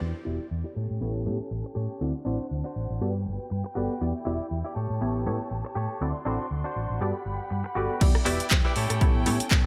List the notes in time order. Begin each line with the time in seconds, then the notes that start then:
0.01 E2 B3 E4 F#4 G4 D5 G5
0.25 E1 B3 E4 F#4 G4 D5 E5
0.40 muted fingered electric bass stroke
0.51 E2
0.64 E4 G4 D5
0.75 A2 C#4 G4 A4 C#5
0.91 A2
1.01 A1 B3 E4 G4 A4 C#5
1.26 A2 B3 E4 G4 A4 C#5
1.40 muted fingered electric bass stroke
1.50 A1, muted clean electric guitar stroke
1.64 muted clean electric guitar stroke
1.75 A2 G4 A4 C#5
2.01 D2 C4 D4 E4 F#4 A4 C5 D5 F#5
2.25 A1 C4 D4 E4 F#4 A4 C5 D5
2.51 D2
2.64 D4 F#4 C5
2.76 A1
2.90 A1
3.01 G2 B3 F#4 G4 A4 B4 D5 G5
3.26 G1
3.50 G2, muted clean electric guitar stroke
3.64 muted clean electric guitar stroke
3.75 G1 B3 F#4 G4 A4 B4 D5
4.01 E2 B3 E4 F#4 G4 D5
4.25 E1 B3 E4 F#4 G4 D5 E5
4.40 muted fingered electric bass stroke
4.51 E2
4.64 E4 G4 D5
4.75 A2 G4 A4 C#5 A5
4.90 A2
5.01 A1 B3 E4 G4 A4 C#5
5.26 A2 B3 E4 G4 A4 C#5
5.40 muted fingered electric bass stroke
5.51 A1, muted clean electric guitar stroke
5.65 muted clean electric guitar stroke
5.75 A2 G4 A4 C#5
6.01 D2 C4 E4 F#4 A4 D5 C6
6.25 A1 C4 D4 E4 F#4 A4 C5 D5
6.51 D2
6.64 D4 F#4 C5
6.76 A1
6.90 A1
7.01 G2 B3 F#4 G4 A4 D5 F#5 B5
7.26 G1
7.40 muted fingered electric bass stroke
7.50 G2, muted clean electric guitar stroke
7.64 muted clean electric guitar stroke
7.75 G1 B3 F#4 G4 A4 B4 D5
8.01 E2 B3 E4 F#4 G4 D5 G5, kick, closed hi-hat, crash
8.15 cross-stick
8.25 E1 B3 E4 F#4 G4 B4 D5 E5, open hi-hat
8.40 muted fingered electric bass stroke, closed hi-hat
8.51 E2, kick, clap, closed hi-hat
8.65 E4 G4 B4 D5
8.75 A2 C#4 E4 G4 A4 C#5, open hi-hat
8.90 A2, cross-stick, closed hi-hat
9.01 A1 B3 E4 G4 A4 C#5, kick, closed hi-hat
9.26 A2 B3 E4 G4 A4 C#5, open hi-hat
9.40 muted fingered electric bass stroke, closed hi-hat
9.50 A1, muted clean electric guitar stroke, kick, clap, closed hi-hat